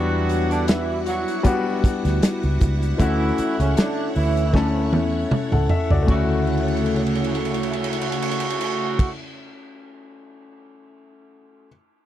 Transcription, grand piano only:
0.00 0.93 G3 medium
0.00 0.94 B3 medium
0.00 0.94 D4 medium
0.00 0.95 F#4 medium
1.43 2.47 G3 medium
1.43 2.48 B3 medium
1.43 2.48 D4 medium
1.43 2.49 F#4 medium
2.98 4.02 A3 medium
2.98 4.03 C#4 medium
2.98 4.03 E4 medium
2.98 4.04 F#4 medium
4.53 5.57 A3 medium
4.53 5.57 C#4 medium
4.53 5.58 E4 medium
4.53 5.32 A4 medium
5.52 5.69 A4 medium
5.52 5.69 F#5 medium
5.70 5.90 E5 medium
5.91 6.13 F#4 medium
5.91 6.27 D5 medium
6.03 9.06 A3 medium
6.07 9.08 C#4 medium
6.07 9.10 E4 medium
6.15 9.12 F#4 medium

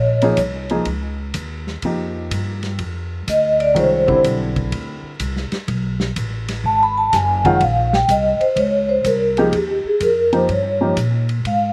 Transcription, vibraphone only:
0.00 0.21 C#5 medium
0.23 0.38 C#5 medium
3.29 3.60 D#5 medium
3.60 3.75 D5 medium
3.77 4.07 C5 medium
4.08 4.17 C5 medium
6.66 6.81 A5 medium
6.83 6.97 B5 loud
6.98 7.12 A5 medium
7.14 7.44 G#5 medium
7.46 7.61 F#5 loud
7.62 7.92 F5 medium
7.94 8.09 G5 medium
8.11 8.41 D#5 medium
8.41 8.56 C5 medium
8.59 8.89 C#5 medium
8.89 9.04 C5 medium
9.06 9.36 A#4 medium
9.37 9.52 G#4 medium
9.54 9.84 G4 medium
9.87 10.01 G#4 medium
10.02 10.32 A#4 medium
10.51 10.94 C#5 medium
11.47 11.73 F5 medium

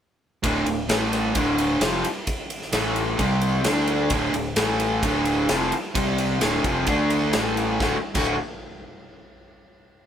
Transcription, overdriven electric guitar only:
0.43 0.66 D2 medium
0.43 0.66 A2 medium
0.43 0.66 D3 medium
0.68 0.85 D2 medium
0.68 0.85 A2 medium
0.89 1.34 A2 medium
0.89 1.35 E3 medium
0.89 1.35 A3 medium
1.35 1.81 D2 loud
1.35 1.81 A2 medium
1.35 1.81 D3 medium
1.82 2.04 F2 medium
1.82 2.04 C3 medium
1.82 2.04 F3 loud
2.74 3.19 A2 medium
2.74 3.19 E3 medium
2.74 3.19 A3 medium
3.20 3.65 C3 medium
3.20 3.65 G3 loud
3.20 3.66 C4 loud
3.66 4.11 D3 medium
3.66 4.11 A3 medium
3.66 4.11 D4 medium
4.11 4.32 D2 medium
4.11 4.32 A2 medium
4.11 4.34 D3 loud
4.33 4.52 D2 medium
4.33 4.52 A2 medium
4.56 5.02 A2 medium
4.56 5.02 E3 medium
4.56 5.02 A3 loud
5.03 5.49 D2 medium
5.03 5.49 A2 medium
5.03 5.49 D3 medium
5.49 5.72 F2 medium
5.49 5.72 C3 medium
5.49 5.72 F3 loud
5.95 6.41 C3 medium
5.95 6.41 G3 loud
5.95 6.41 C4 loud
6.41 6.64 D2 medium
6.41 6.64 A2 medium
6.41 6.65 D3 medium
6.65 6.88 F2 medium
6.65 6.88 C3 medium
6.65 6.88 F3 medium
6.89 7.34 D3 medium
6.89 7.34 A3 medium
6.89 7.35 D4 medium
7.34 7.80 A2 medium
7.34 7.80 E3 medium
7.34 7.80 A3 medium
7.81 7.95 D2 medium
7.81 7.95 A2 medium
7.81 7.95 D3 medium
7.81 7.95 A3 loud
7.81 7.96 F#4 medium
8.15 8.34 D2 medium
8.15 8.34 A2 medium
8.15 8.34 D3 loud
8.15 8.35 A3 loud
8.15 8.35 F#4 loud

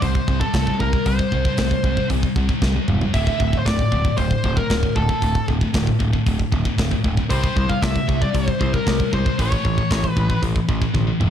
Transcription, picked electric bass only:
0.03 0.19 C2 loud
0.28 0.44 C2 loud
0.54 0.70 C2 loud
0.80 0.96 C2 medium
1.06 1.22 C2 medium
1.32 1.48 C2 loud
1.58 1.74 C2 medium
1.83 2.00 C2 medium
2.10 2.26 C2 medium
2.36 2.52 C2 medium
2.62 2.78 C2 medium
2.88 3.04 E1 medium
3.14 3.30 D1 medium
3.40 3.56 D1 medium
3.66 3.83 D1 medium
3.92 4.08 D1 medium
4.18 4.34 D1 medium
4.44 4.60 D1 loud
4.70 4.87 D1 loud
4.96 5.12 D1 medium
5.22 5.38 D1 medium
5.48 5.65 D1 medium
5.74 5.90 D1 loud
6.00 6.17 D1 medium
6.26 6.43 D1 medium
6.52 6.69 D1 loud
6.78 6.94 D1 medium
7.04 7.21 D1 medium
7.30 7.47 C2 medium
7.56 7.73 C2 medium
7.82 7.99 C2 medium
8.08 8.25 C2 medium
8.34 8.51 C2 medium
8.61 8.77 C2 loud
8.87 9.03 C2 medium
9.13 9.29 C2 medium
9.38 9.55 A1 medium
9.65 9.81 A1 medium
9.91 10.07 A1 medium
10.16 10.33 A1 medium
10.42 10.59 A1 medium
10.69 10.85 A1 medium
10.94 11.11 A1 loud
11.20 11.30 E1 medium

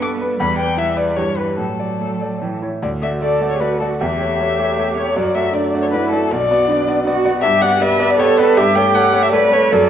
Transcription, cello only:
0.00 0.40 B3 medium
0.41 0.76 G3 medium
0.79 1.19 G3 medium
1.17 1.59 E3 medium
1.58 2.43 F#3 medium
2.41 2.62 E3 medium
3.21 3.62 A4 medium
3.60 4.02 F#4 medium
4.00 4.39 G4 medium
4.40 5.18 G4 medium
5.16 5.54 F#4 medium
5.54 5.94 D4 medium
5.92 6.30 E4 medium
6.31 6.70 F#4 medium
6.68 7.05 D4 medium
7.06 7.42 F#4 loud
7.43 7.80 G4 loud
7.81 8.17 B4 loud
8.18 8.59 A4 loud
8.57 9.36 G4 loud
9.34 9.74 B4 loud
9.73 9.90 A4 loud

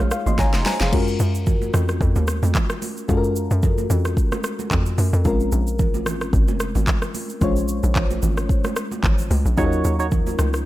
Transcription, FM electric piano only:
0.00 0.61 G#3 medium
0.00 0.62 C#4 medium
0.00 0.62 D#4 medium
0.00 0.62 F4 medium
0.00 0.82 G#4 medium
0.00 0.40 C#5 medium
0.00 0.10 F5 medium
0.12 0.37 F5 medium
0.27 0.39 D#5 medium
0.27 0.38 C6 medium
0.39 0.65 C#5 medium
0.39 0.64 G#5 medium
0.39 0.65 A#5 medium
0.66 0.80 C5 medium
0.66 0.80 G#5 medium
0.66 0.91 A#5 medium
0.81 1.07 G#4 medium
0.81 1.07 F5 medium
0.92 3.05 G#3 medium
0.92 3.05 C#4 medium
0.92 3.05 F4 medium
0.92 3.06 F#4 medium
0.92 3.06 A#4 medium
3.08 5.21 G#3 medium
3.08 5.21 C#4 medium
3.08 5.21 F4 medium
3.08 5.22 F#4 medium
3.08 3.17 A4 medium
3.17 5.25 A#4 medium
5.25 7.37 G#3 medium
5.25 7.37 C4 medium
5.25 7.38 C#4 medium
5.25 7.38 F4 medium
5.25 7.38 A#4 medium
7.41 9.53 G#3 medium
7.41 9.54 C#4 medium
7.41 9.54 F4 medium
7.41 9.54 C5 medium
7.41 9.55 C#5 medium
9.57 10.65 F#3 medium
9.57 10.65 C#4 medium
9.57 10.65 D#4 medium
9.57 10.65 F4 medium
9.57 9.66 G#4 medium
9.66 10.65 A#4 medium

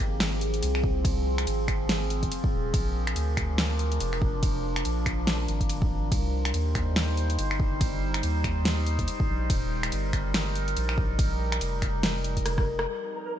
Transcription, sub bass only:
0.00 0.61 G#1 loud
0.62 1.46 C2 loud
1.47 2.30 G#1 loud
2.53 2.72 D#1 loud
2.74 3.15 A#1 loud
3.16 3.99 D2 medium
4.00 4.84 F1 loud
4.85 5.47 A#1 medium
5.48 5.89 G#1 loud
5.91 6.10 G#1 loud
6.12 6.53 C2 loud
6.54 7.37 D#2 loud
7.38 8.22 G1 loud
8.23 9.06 D#2 loud
9.29 9.48 A#1 loud
9.50 9.91 D#1 loud
9.92 10.75 G1 loud
10.77 11.60 A#1 loud
11.61 12.44 F1 loud
12.45 12.86 F1 loud

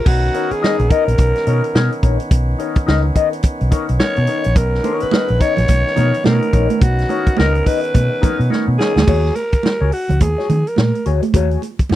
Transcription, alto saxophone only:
0.07 0.54 F#4 loud
0.52 0.92 G#4 medium
0.90 2.03 A#4 loud
4.00 4.59 C#5 loud
4.57 5.04 A#4 loud
5.02 5.43 B4 loud
5.41 6.25 C#5 loud
6.26 6.84 A#4 loud
6.82 7.41 F#4 loud
7.39 7.69 A#4 loud
7.67 8.51 B4 loud
8.79 9.37 G#4 loud
9.35 9.95 A#4 loud
9.93 10.21 F#4 medium
10.22 10.69 G#4 medium
10.68 11.06 A#4 medium

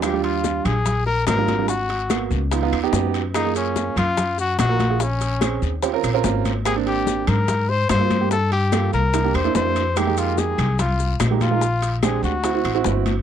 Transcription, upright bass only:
0.00 0.59 D#2 medium
0.65 1.23 A#1 medium
1.27 2.25 G#1 medium
2.30 2.69 C#2 medium
2.72 2.91 D#2 medium
2.92 3.90 F#2 medium
3.96 4.54 F#2 medium
4.59 5.56 A#1 medium
5.62 6.01 D#2 medium
6.03 6.23 A#1 medium
6.24 7.21 G#1 medium
7.28 7.86 G#2 medium
7.90 8.87 G2 loud
8.93 9.31 C2 medium
9.34 9.54 E2 medium
9.55 10.52 F2 medium
10.58 11.16 C2 loud
11.20 12.17 A#1 medium
12.23 12.61 D2 medium
12.64 12.84 A1 medium
12.85 13.22 G1 medium

